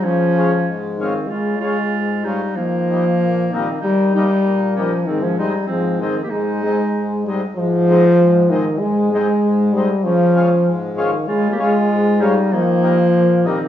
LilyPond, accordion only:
<<
  \new Staff \with { instrumentName = "Accordion" } { \time 2/4 \key aes \major \tempo 4 = 97 r8 <aes des' f'>8 r8 <aes des' f'>8 | r8 <aes des' f'>8 r8 <aes des' f'>8 | r8 <g bes ees'>8 r8 <g bes ees'>8 | r8 <g bes ees'>8 r8 <g bes ees'>8 |
r8 <aes c' ees'>8 r8 <aes c' ees'>8 | r8 <aes c' ees'>8 r8 <aes c' ees'>8 | r8 <aes c' ees'>8 r8 <aes c' ees'>8 | r8 <aes c' ees'>8 r8 <aes c' ees'>8 |
r8 <aes des' f'>8 r8 <aes des' f'>8 | r8 <aes des' f'>8 r8 <aes des' f'>8 | r8 <g bes ees'>8 r8 <g bes ees'>8 | }
  \new Staff \with { instrumentName = "Accordion" } { \clef bass \time 2/4 \key aes \major des4 aes,4 | des4 aes,4 | ees4 bes,4 | ees4 bes,4 |
aes,4 aes,4 | aes,4 aes,4 | aes,4 aes,4 | aes,4 aes,4 |
des4 aes,4 | des4 aes,4 | ees4 bes,4 | }
>>